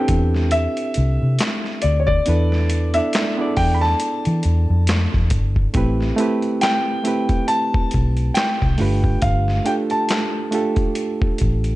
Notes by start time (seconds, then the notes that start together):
Already playing: C4 D4 E4 G4 A4 B4 D5 G5
0.08 E2, kick, closed hi-hat
0.35 snare
0.51 E5, closed hi-hat
0.77 closed hi-hat
0.94 C2, closed hi-hat
1.22 C3
1.39 snare, clap, closed hi-hat
1.64 snare
1.82 D2 D5, closed hi-hat
2.00 C#5
2.07 D5, kick
2.25 E2 B3 D4 E4 A4 B4, closed hi-hat
2.52 snare
2.70 closed hi-hat
2.94 B3 D4 E4 A4 E5, closed hi-hat
2.98 D5
3.13 snare, clap, closed hi-hat
3.37 B3 D4 E4 G#4 D5
3.47 A4
3.57 E2 G5, kick, open hi-hat
3.75 B5
3.81 A5, snare
4.00 closed hi-hat
4.25 E3, closed hi-hat
4.43 E2, closed hi-hat
4.70 F2
4.87 snare, clap, closed hi-hat
5.13 E2, kick, snare
5.30 G1, kick, closed hi-hat
5.56 kick
5.74 A1 A3 C4 E4 G4 B4, kick, closed hi-hat
6.01 snare
6.17 A3 C4 E4 G4 B4, closed hi-hat
6.42 closed hi-hat
6.61 G5, snare, clap, closed hi-hat
7.04 A3 C4 E4 G4 B4, closed hi-hat
7.29 kick, closed hi-hat
7.48 A5, closed hi-hat
7.74 kick
7.91 kick, closed hi-hat
7.95 B1
8.17 closed hi-hat
8.34 G5, snare, clap, closed hi-hat
8.61 C2, kick, snare
8.78 G1 A3 D4 F4 G4 B4, open hi-hat
9.04 kick
9.22 G1 F5, kick, closed hi-hat
9.48 snare
9.65 A3 D4 F4 G4 A4 G5, closed hi-hat
9.90 A5, closed hi-hat
10.09 snare, clap, closed hi-hat
10.51 A3 D4 F4 G4 A4, closed hi-hat
10.76 kick, closed hi-hat
10.95 closed hi-hat
11.22 kick
11.38 A1, kick, closed hi-hat
11.64 closed hi-hat